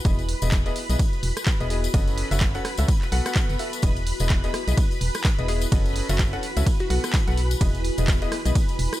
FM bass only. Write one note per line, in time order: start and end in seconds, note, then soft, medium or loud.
0.05 0.34 E1 loud
0.42 0.70 E1 loud
0.90 0.96 B1 medium
1.23 1.32 E1 medium
1.60 1.88 E1 medium
1.94 2.23 F#1 loud
2.31 2.59 F#1 medium
2.78 2.85 C#2 medium
3.12 3.21 B1 medium
3.49 3.56 F#1 loud
3.83 4.12 E1 loud
4.20 4.48 E1 loud
4.68 4.74 B1 medium
5.01 5.10 E1 medium
5.39 5.66 E1 medium
5.72 6.01 F#1 loud
6.09 6.37 F#1 medium
6.57 6.63 C#2 medium
6.90 6.99 B1 medium
7.27 7.55 B1 medium
7.61 7.90 E1 loud
7.98 8.26 E1 loud
8.46 8.52 B1 medium
8.79 8.88 E1 medium